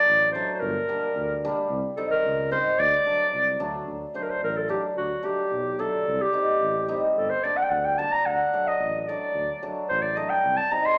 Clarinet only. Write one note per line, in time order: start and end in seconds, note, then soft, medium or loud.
0.00 0.32 D5 loud
0.32 0.51 C5 medium
0.55 0.61 C5 medium
0.60 1.42 A#4 medium
1.97 2.09 A4 medium
2.11 2.49 A#4 loud
2.52 2.81 C5 medium
2.79 3.61 D5 loud
4.15 4.24 C5 medium
4.23 4.31 A#4 medium
4.30 4.43 C5 medium
4.44 4.59 A#4 medium
4.57 4.70 A4 medium
4.70 4.82 G4 medium
4.97 5.26 F#4 medium
5.25 5.81 G4 medium
5.80 6.23 A4 medium
6.21 7.03 G4 medium
7.17 7.32 A4 medium
7.30 7.45 C5 medium
7.44 7.58 D5 medium
7.57 7.64 F#5 medium
7.63 7.71 G5 medium
7.70 7.86 F#5 medium
7.85 8.00 G5 medium
7.98 8.14 A5 medium
8.12 8.27 A#5 medium
8.26 8.69 F#5 medium
8.67 9.00 D#5 loud
9.00 9.10 D#5 medium
9.08 9.62 D5 medium
9.89 10.04 C5 medium
10.02 10.18 D5 medium
10.17 10.31 D#5 medium
10.29 10.59 G5 medium
10.57 10.72 A5 medium
10.71 10.87 A#5 medium
10.85 10.98 C6 loud